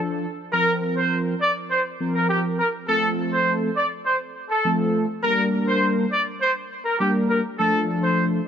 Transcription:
0.00 0.26 F3 medium
0.00 0.26 D4 medium
0.00 0.26 A4 medium
0.53 1.35 F3 medium
0.53 1.35 C4 medium
0.53 0.74 A#4 loud
0.53 1.35 A#4 medium
0.97 1.18 C5 medium
1.41 1.52 D5 medium
1.71 1.81 C5 loud
2.00 2.61 F3 medium
2.00 2.61 C4 medium
2.00 2.62 A#4 medium
2.15 2.26 A#4 medium
2.30 2.40 G4 medium
2.59 2.69 A#4 medium
2.88 3.70 F3 medium
2.88 3.70 A3 medium
2.88 3.70 C4 medium
2.88 3.10 A4 loud
2.88 3.70 A4 medium
3.33 3.54 C5 medium
3.77 3.87 D5 medium
4.06 4.17 C5 medium
4.50 4.71 A4 medium
4.65 5.06 F3 medium
4.65 5.06 A3 medium
4.65 5.06 C4 medium
4.65 5.06 A4 medium
5.23 6.05 G3 medium
5.23 6.05 A#3 medium
5.23 6.05 D4 medium
5.23 5.45 A#4 loud
5.23 6.05 A#4 medium
5.68 5.89 C5 medium
6.12 6.23 D5 medium
6.41 6.52 C5 medium
6.85 6.96 A#4 medium
7.00 7.41 G3 medium
7.00 7.41 A#3 medium
7.00 7.41 D4 medium
7.00 7.11 G4 medium
7.00 7.41 A#4 medium
7.30 7.40 A#4 medium
7.59 8.41 F3 medium
7.59 8.41 A3 medium
7.59 8.41 D4 medium
7.59 7.80 A4 loud
7.59 8.41 A4 medium
8.03 8.24 C5 medium

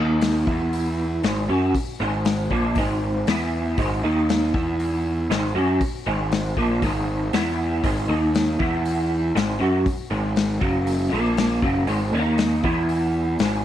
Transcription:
0.00 0.44 D#2 medium
0.00 0.47 D#3 medium
0.00 0.47 A#3 loud
0.00 0.48 D#4 loud
0.21 snare loud
0.21 open hi-hat medium
0.47 1.19 E2 medium
0.47 1.23 E3 medium
0.47 1.23 B3 medium
0.47 1.23 E4 loud
0.47 kick loud
0.73 open hi-hat medium
1.23 1.47 G#1 medium
1.23 1.48 G#2 medium
1.23 1.48 D#3 medium
1.23 1.49 G#3 loud
1.23 snare loud
1.23 open hi-hat medium
1.48 1.73 F#2 loud
1.48 1.73 F#3 medium
1.48 1.74 C#4 loud
1.48 1.74 F#4 loud
1.75 kick loud
1.75 open hi-hat medium
2.00 2.47 G#1 medium
2.00 2.50 G#2 medium
2.00 2.50 D#3 medium
2.00 2.50 G#3 loud
2.25 snare loud
2.25 open hi-hat medium
2.51 2.74 A#1 medium
2.51 2.75 A#2 medium
2.51 2.75 F3 medium
2.51 2.76 A#3 loud
2.51 kick medium
2.75 3.23 G#1 medium
2.75 3.27 G#2 medium
2.75 3.27 D#3 medium
2.75 3.27 G#3 loud
2.75 kick loud
2.75 open hi-hat medium
3.27 3.75 E2 medium
3.27 3.77 E3 medium
3.27 3.78 B3 medium
3.27 3.78 E4 medium
3.27 snare loud
3.27 open hi-hat medium
3.78 4.01 G#1 loud
3.78 4.02 G#2 medium
3.78 4.02 D#3 loud
3.78 4.03 G#3 loud
3.78 kick loud
3.78 open hi-hat medium
4.03 4.50 D#2 medium
4.03 4.55 D#3 medium
4.03 4.55 A#3 medium
4.03 4.55 D#4 loud
4.29 snare loud
4.29 open hi-hat soft
4.54 5.26 E2 medium
4.54 5.30 E3 medium
4.54 5.30 B3 medium
4.54 5.30 E4 loud
4.54 kick loud
4.80 open hi-hat medium
5.29 5.53 G#1 medium
5.29 5.55 G#2 loud
5.29 5.54 D#3 medium
5.29 5.55 G#3 loud
5.29 snare loud
5.29 open hi-hat medium
5.55 5.79 F#2 medium
5.55 5.80 F#3 medium
5.55 5.80 C#4 loud
5.55 5.80 F#4 loud
5.81 kick loud
5.81 open hi-hat medium
6.07 6.53 G#1 medium
6.07 6.56 G#2 medium
6.07 6.56 D#3 loud
6.07 6.56 G#3 loud
6.32 snare loud
6.32 open hi-hat medium
6.57 6.80 A#1 medium
6.57 6.81 A#2 medium
6.57 6.81 F3 medium
6.57 6.82 A#3 medium
6.57 kick medium
6.82 7.29 G#1 medium
6.82 7.32 G#2 medium
6.82 7.32 D#3 loud
6.82 7.32 G#3 loud
6.82 kick loud
6.82 open hi-hat medium
7.33 7.80 E2 medium
7.33 7.83 E3 medium
7.33 7.83 B3 medium
7.33 7.83 E4 loud
7.33 snare loud
7.33 open hi-hat medium
7.84 8.07 G#1 medium
7.84 8.08 G#2 medium
7.84 8.07 D#3 loud
7.84 8.08 G#3 loud
7.84 kick loud
7.84 open hi-hat medium
8.08 8.56 D#2 medium
8.08 8.58 D#3 medium
8.08 8.59 A#3 medium
8.08 8.59 D#4 loud
8.34 snare loud
8.34 open hi-hat medium
8.59 9.31 E2 medium
8.59 9.34 E3 medium
8.59 9.34 B3 medium
8.59 9.35 E4 medium
8.59 kick loud
8.85 open hi-hat medium
9.35 9.59 G#1 medium
9.35 9.60 G#2 medium
9.35 9.59 D#3 loud
9.35 9.60 G#3 loud
9.35 snare loud
9.35 open hi-hat soft
9.60 9.84 F#2 loud
9.60 9.84 F#3 medium
9.60 9.85 C#4 medium
9.60 9.85 F#4 loud
9.86 kick loud
9.86 open hi-hat medium
10.11 10.58 G#1 medium
10.11 10.60 G#2 medium
10.11 10.60 D#3 loud
10.11 10.61 G#3 loud
10.36 snare loud
10.36 open hi-hat medium
10.60 11.08 F#1 medium
10.60 11.11 F#2 medium
10.60 11.12 C#3 medium
10.60 11.12 F#3 loud
10.60 kick loud
10.87 open hi-hat medium
11.12 11.59 A#1 medium
11.12 11.62 A#2 medium
11.12 11.62 F3 loud
11.12 11.62 A#3 medium
11.37 snare loud
11.37 open hi-hat medium
11.62 11.86 F#1 loud
11.62 11.87 F#2 medium
11.62 11.87 C#3 loud
11.62 11.87 F#3 medium
11.62 kick loud
11.87 12.11 G#1 loud
11.87 12.12 G#2 medium
11.87 12.12 D#3 medium
11.87 12.14 G#3 loud
11.87 open hi-hat medium
12.13 12.60 D#2 medium
12.13 12.63 D#3 loud
12.13 12.63 A#3 loud
12.13 12.63 D#4 loud
12.38 snare loud
12.38 open hi-hat medium
12.64 13.35 E2 medium
12.64 13.39 E3 medium
12.64 13.39 B3 loud
12.64 13.39 E4 loud
12.64 kick loud
12.89 open hi-hat medium
13.39 13.63 G#1 medium
13.39 13.64 G#2 medium
13.39 13.64 D#3 loud
13.39 13.64 G#3 loud
13.39 snare loud
13.39 open hi-hat medium

